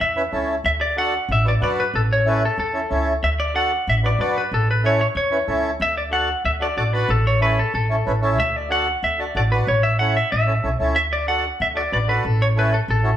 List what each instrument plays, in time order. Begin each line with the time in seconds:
0.00 upright bass E2, clean electric guitar E5
0.16 accordion C#4 E4 B4
0.32 upright bass C#2, accordion C#4 E4 A4
0.64 upright bass D2, clean electric guitar E5
0.81 clean electric guitar D5
0.97 accordion D4 F#4 A4, clean electric guitar F#5
1.29 upright bass A1, clean electric guitar E5
1.45 accordion D4 F#4 B4, clean electric guitar D5
1.60 upright bass F#2, accordion D4 F#4 B4, clean electric guitar D5
1.80 clean electric guitar B4
1.94 upright bass A1, clean electric guitar A4
2.13 clean electric guitar C#5
2.26 accordion C#4 E4 A4, clean electric guitar B4
2.45 clean electric guitar A4
2.58 upright bass E2, clean electric guitar A4
2.74 accordion C#4 E4 A4
2.90 upright bass C#2, accordion C#4 E4 A4
3.23 upright bass D2, clean electric guitar E5
3.40 clean electric guitar D5
3.54 accordion D4 F#4 A4, clean electric guitar F#5
3.87 upright bass A1, clean electric guitar E5
4.03 accordion D4 F#4 B4, clean electric guitar D5
4.19 upright bass F#2, accordion D4 F#4 B4, clean electric guitar D5
4.38 clean electric guitar B4
4.52 upright bass A1, clean electric guitar A4
4.71 clean electric guitar B4
4.83 accordion C#4 E4 A4, clean electric guitar C#5
5.01 clean electric guitar C#5
5.15 upright bass E2, clean electric guitar C#5
5.31 accordion C#4 E4 B4
5.47 upright bass C#2, accordion C#4 E4 A4
5.80 upright bass D2, clean electric guitar E5
5.97 clean electric guitar D5
6.11 accordion D4 F#4 A4, clean electric guitar F#5
6.44 upright bass D2, clean electric guitar E5
6.60 accordion D4 F#4 A4, clean electric guitar D5
6.76 upright bass A1, accordion D4 F#4 A4, clean electric guitar D5
6.93 accordion D4 F#4 B4, clean electric guitar B4
7.08 upright bass A1, clean electric guitar A4
7.27 clean electric guitar C#5
7.41 accordion C#4 E4 A4, clean electric guitar B4
7.59 clean electric guitar A4
7.74 upright bass A1, clean electric guitar A4
7.90 accordion C#4 E4 A4
8.06 upright bass A1, accordion C#4 E4 B4
8.21 accordion C#4 E4 A4
8.39 upright bass D2, clean electric guitar E5
8.56 clean electric guitar D5
8.70 accordion D4 F#4 A4, clean electric guitar F#5
9.03 upright bass D2, clean electric guitar E5
9.19 accordion D4 F#4 A4, clean electric guitar D5
9.35 upright bass A1, accordion D4 F#4 A4, clean electric guitar D5
9.51 accordion D4 F#4 B4, clean electric guitar B4
9.67 upright bass A1, clean electric guitar C#5
9.83 clean electric guitar E5
9.99 accordion C#4 E4 A4, clean electric guitar F#5
10.17 clean electric guitar E5
10.32 upright bass A1, clean electric guitar E5
10.46 accordion C#4 E4 A4
10.63 upright bass B1, accordion C#4 E4 A4
10.79 upright bass C#2, accordion C#4 E4 A4
10.96 upright bass D2, clean electric guitar E5
11.13 clean electric guitar D5
11.28 accordion D4 F#4 A4, clean electric guitar F#5
11.60 upright bass D2, clean electric guitar E5
11.75 accordion D4 F#4 A4, clean electric guitar D5
11.92 upright bass A1, accordion D4 F#4 B4, clean electric guitar D5
12.08 accordion D4 F#4 A4, clean electric guitar B4
12.25 upright bass A1, clean electric guitar A4
12.42 clean electric guitar C#5
12.56 accordion C#4 E4 A4, clean electric guitar B4
12.74 clean electric guitar A4
12.88 upright bass A1, clean electric guitar A4
13.03 accordion C#4 E4 F#4